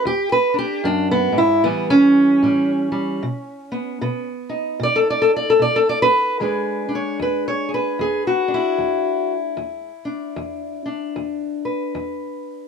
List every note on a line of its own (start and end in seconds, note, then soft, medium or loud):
0.05 0.78 E2 medium
0.05 0.32 G4 medium
0.32 0.58 B4 loud
0.54 0.84 D4 soft
0.59 0.85 G4 medium
0.84 1.32 F#2 medium
0.84 1.11 D4 loud
1.11 1.38 B3 loud
1.32 1.64 G#2 medium
1.38 1.64 E4 loud
1.64 2.37 A2 medium
1.64 3.19 E3 medium
1.64 2.42 G3 medium
1.64 1.90 B3 medium
1.90 4.28 C#4 loud
2.43 3.16 A2 medium
2.43 2.91 G3 medium
2.92 3.23 G3 medium
3.23 3.96 B2 medium
3.72 4.00 B3 soft
4.01 4.75 B2 medium
4.01 6.36 B3 medium
4.49 6.36 D#4 soft
4.80 5.53 B2 medium
4.80 4.98 D5 loud
4.96 5.07 A4 loud
5.10 5.31 D5 medium
5.22 5.30 A4 loud
5.36 5.51 D5 medium
5.50 5.60 A4 medium
5.59 6.33 B2 medium
5.59 5.77 D5 loud
5.76 5.87 A4 loud
5.89 6.02 D5 loud
6.02 6.37 B4 loud
6.40 7.13 E2 medium
6.40 9.91 G#3 medium
6.40 6.88 D4 soft
6.40 7.68 G#4 soft
6.40 6.95 B4 soft
6.89 8.48 D4 soft
6.95 7.20 C#5 medium
7.20 7.92 E2 medium
7.20 7.47 B4 medium
7.48 7.73 C#5 medium
7.69 8.01 G#4 soft
7.74 8.52 B4 medium
7.99 8.72 E2 medium
7.99 8.26 G#4 medium
8.27 9.32 F#4 medium
8.48 9.60 D4 soft
8.54 11.65 E4 medium
8.78 9.51 E2 medium
9.57 10.30 E2 medium
10.05 10.85 D4 soft
10.36 11.10 E2 medium
10.86 12.68 D4 soft
11.16 11.89 E2 medium
11.65 12.68 B4 soft
11.95 12.68 E2 medium